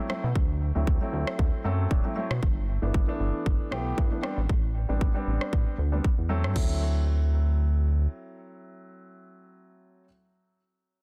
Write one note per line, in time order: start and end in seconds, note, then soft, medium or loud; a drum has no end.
0.09 0.24 F#3 medium
0.09 0.24 A3 medium
0.09 0.24 C4 medium
0.09 0.25 E4 medium
0.09 cross-stick medium
0.24 0.33 B2 medium
0.36 0.72 D2 loud
0.36 kick loud
0.75 0.85 D2 medium
0.75 0.98 F#3 medium
0.75 0.98 A3 medium
0.75 0.98 C4 medium
0.75 0.98 E4 medium
0.87 0.99 D2 medium
0.87 kick loud
1.01 1.62 F#3 medium
1.01 1.62 A3 medium
1.01 1.62 C4 medium
1.01 1.63 E4 medium
1.13 1.25 D2 loud
1.27 cross-stick medium
1.39 1.51 D2 medium
1.39 kick loud
1.64 1.87 F#2 loud
1.64 1.88 F#3 medium
1.64 1.88 A3 medium
1.64 1.88 C4 medium
1.64 1.88 A4 medium
1.90 2.02 D1 loud
1.90 2.02 F#3 medium
1.90 2.03 A3 medium
1.90 2.03 C4 medium
1.90 2.03 D4 medium
1.90 kick loud
2.04 2.13 F#3 medium
2.04 2.13 A3 medium
2.04 2.14 C4 medium
2.04 2.14 E4 medium
2.16 2.31 F#3 medium
2.16 2.31 A3 medium
2.16 2.31 C4 medium
2.16 2.31 E4 medium
2.30 2.40 B2 medium
2.30 cross-stick medium
2.43 2.79 G1 medium
2.43 kick loud
2.82 2.92 G1 medium
2.82 3.05 E3 medium
2.82 3.05 A3 medium
2.82 3.05 B3 medium
2.82 3.05 D4 medium
2.94 3.06 G1 medium
2.94 kick loud
3.07 3.68 E3 medium
3.07 3.68 A3 medium
3.07 3.69 B3 medium
3.07 3.69 D4 medium
3.20 3.32 G1 medium
3.46 3.58 G1 medium
3.46 kick loud
3.71 3.94 B1 medium
3.71 3.94 E3 medium
3.71 3.94 A3 medium
3.71 3.95 B3 medium
3.71 3.95 G4 medium
3.71 cross-stick medium
3.97 4.09 G2 loud
3.97 4.09 E3 medium
3.97 4.10 A3 medium
3.97 4.10 B3 medium
3.97 4.10 D4 medium
3.97 kick loud
4.11 4.20 E3 medium
4.11 4.20 A3 medium
4.11 4.20 B3 medium
4.11 4.21 D4 medium
4.22 4.37 G3 medium
4.22 4.38 B3 medium
4.22 4.38 C4 medium
4.22 4.38 D4 medium
4.22 cross-stick medium
4.37 4.47 A1 medium
4.49 4.86 A1 medium
4.49 kick loud
4.89 4.99 A1 medium
4.89 5.11 G3 medium
4.89 5.12 B3 medium
4.89 5.12 C4 medium
4.89 5.12 D4 medium
5.01 5.13 A1 medium
5.01 kick loud
5.14 5.75 G3 medium
5.14 5.75 B3 medium
5.14 5.76 C4 medium
5.14 5.76 D4 medium
5.27 5.39 A1 medium
5.41 cross-stick medium
5.53 5.65 A1 loud
5.53 kick loud
5.78 6.00 D2 medium
5.92 6.04 G3 medium
5.92 6.04 B3 medium
5.92 6.05 C4 medium
5.92 6.05 D4 medium
6.04 kick loud
6.18 6.46 E2 medium
6.29 6.52 F#3 medium
6.29 6.54 A3 medium
6.29 6.54 C4 medium
6.29 6.82 A4 medium
6.44 6.54 G2 medium
6.44 cross-stick medium
6.54 8.07 D2 medium
6.54 10.03 F#3 medium
6.54 10.04 A3 medium
6.54 10.05 C4 medium
6.54 10.06 E4 medium
6.54 kick medium
6.54 crash medium